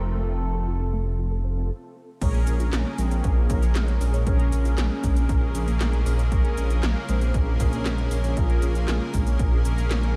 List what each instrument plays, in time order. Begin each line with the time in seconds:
Already playing: detuned saw bass F1, analog synth pad C3 F3 A3, analog polysynth C4 F4 A4, analog synth lead A#4
0.03 synth arpeggio sound A5
0.16 synth arpeggio sound A3, analog polysynth C4 F4 A4, analog synth lead A4
0.29 synth arpeggio sound C4
0.42 synth arpeggio sound F4
0.55 synth arpeggio sound A4
0.68 synth arpeggio sound F4
0.80 synth arpeggio sound C4
0.93 synth arpeggio sound A3
1.06 synth arpeggio sound C4
1.19 synth arpeggio sound F4
1.31 synth arpeggio sound A4
1.44 analog polysynth C4 F4 A4, synth arpeggio sound C5
1.57 synth arpeggio sound C4
2.21 detuned saw bass A#1, analog synth pad C#3 G#3 A#3, synth arpeggio sound G#3, analog polysynth C#4 G#4 A#4, kick, closed hi-hat, crash, cabasa
2.34 synth arpeggio sound A#3, closed hi-hat
2.47 detuned saw bass A#1, synth arpeggio sound C#4, closed hi-hat, cabasa
2.60 synth arpeggio sound F4, closed hi-hat, cabasa
2.73 detuned saw bass A#1, synth arpeggio sound C#4, snare, clap, closed hi-hat, cabasa
2.85 synth arpeggio sound A#3
2.98 detuned saw bass A#1, synth arpeggio sound G#3, analog synth lead C4, closed hi-hat, cabasa
3.11 synth arpeggio sound A#3, closed hi-hat, cabasa
3.24 detuned saw bass A#1, analog synth lead A#3, synth arpeggio sound C#4, kick, closed hi-hat, cabasa
3.37 synth arpeggio sound F4
3.50 detuned saw bass A#1, synth arpeggio sound C#4, analog polysynth C#4 G#4 A#4, kick, closed hi-hat, cabasa
3.62 detuned saw bass A#1, synth arpeggio sound A#3, closed hi-hat, cabasa
3.75 detuned saw bass A#1, synth arpeggio sound G#3, analog synth lead G#3, snare, clap, closed hi-hat, cabasa
3.88 synth arpeggio sound A#3, closed hi-hat
4.01 detuned saw bass A#1, synth arpeggio sound C#4, open hi-hat, cabasa
4.14 synth arpeggio sound C#5, closed hi-hat, cabasa
4.26 detuned saw bass A#1, synth arpeggio sound G#3, analog polysynth C#4 G#4 A#4, analog synth lead C#4, kick, closed hi-hat, cabasa
4.39 synth arpeggio sound A#3, closed hi-hat
4.52 detuned saw bass A#1, synth arpeggio sound C#4, closed hi-hat, cabasa
4.65 synth arpeggio sound F4, closed hi-hat, cabasa
4.78 detuned saw bass A#1, synth arpeggio sound C#4, snare, clap, closed hi-hat, cabasa
4.91 synth arpeggio sound A#3
5.03 detuned saw bass A#1, synth arpeggio sound G#3, kick, closed hi-hat, cabasa
5.16 synth arpeggio sound A#3, closed hi-hat, cabasa
5.29 detuned saw bass A#1, synth arpeggio sound C#4, kick, closed hi-hat, cabasa
5.42 synth arpeggio sound F4
5.55 detuned saw bass A#1, synth arpeggio sound C#4, analog polysynth C#4 G#4 A#4, closed hi-hat, cabasa
5.67 detuned saw bass A#1, synth arpeggio sound A#3, closed hi-hat, cabasa
5.80 detuned saw bass A#1, synth arpeggio sound G#3, snare, clap, closed hi-hat, cabasa
5.93 synth arpeggio sound A#3, closed hi-hat
6.06 detuned saw bass A#1, synth arpeggio sound C#4, open hi-hat, cabasa
6.19 synth arpeggio sound C#5, closed hi-hat, cabasa
6.32 detuned saw bass A#1, synth arpeggio sound G#3, analog polysynth C#4 G#4 A#4, kick, closed hi-hat, cabasa
6.45 synth arpeggio sound A#3, closed hi-hat
6.57 detuned saw bass A#1, synth arpeggio sound C#4, closed hi-hat, cabasa
6.70 synth arpeggio sound F4, closed hi-hat, cabasa
6.83 detuned saw bass A#1, synth arpeggio sound C#4, snare, clap, closed hi-hat, cabasa
6.96 synth arpeggio sound A#3
7.08 detuned saw bass A#1, synth arpeggio sound G#3, analog synth lead C4, closed hi-hat, cabasa
7.21 synth arpeggio sound A#3, closed hi-hat, cabasa
7.34 detuned saw bass A#1, analog synth lead A#3, synth arpeggio sound C#4, kick, closed hi-hat, cabasa
7.47 synth arpeggio sound F4
7.60 detuned saw bass A#1, synth arpeggio sound C#4, analog polysynth C#4 G#4 A#4, analog synth lead C#4, kick, closed hi-hat, cabasa
7.73 detuned saw bass A#1, synth arpeggio sound A#3, closed hi-hat, cabasa
7.85 detuned saw bass A#1, synth arpeggio sound G#3, snare, clap, closed hi-hat, cabasa
7.98 synth arpeggio sound A#3, closed hi-hat
8.11 detuned saw bass A#1, synth arpeggio sound C#4, open hi-hat, cabasa
8.24 synth arpeggio sound C#5, closed hi-hat, cabasa
8.37 detuned saw bass A#1, synth arpeggio sound G#3, analog polysynth C#4 G#4 A#4, analog synth lead F4, kick, closed hi-hat, cabasa
8.49 synth arpeggio sound A#3, closed hi-hat
8.62 detuned saw bass A#1, synth arpeggio sound C#4, closed hi-hat, cabasa
8.75 synth arpeggio sound F4, closed hi-hat, cabasa
8.88 detuned saw bass A#1, synth arpeggio sound C#4, snare, clap, closed hi-hat, cabasa
9.01 synth arpeggio sound A#3
9.13 detuned saw bass A#1, synth arpeggio sound G#3, kick, closed hi-hat, cabasa
9.26 synth arpeggio sound A#3, closed hi-hat, cabasa
9.39 detuned saw bass A#1, synth arpeggio sound C#4, kick, closed hi-hat, cabasa
9.52 synth arpeggio sound F4
9.65 detuned saw bass A#1, synth arpeggio sound C#4, analog polysynth C#4 G#4 A#4, closed hi-hat, cabasa
9.78 detuned saw bass A#1, synth arpeggio sound A#3, closed hi-hat, cabasa
9.90 detuned saw bass A#1, synth arpeggio sound G#3, snare, clap, closed hi-hat, cabasa
10.03 synth arpeggio sound A#3, analog polysynth C#4 G#4 A#4, closed hi-hat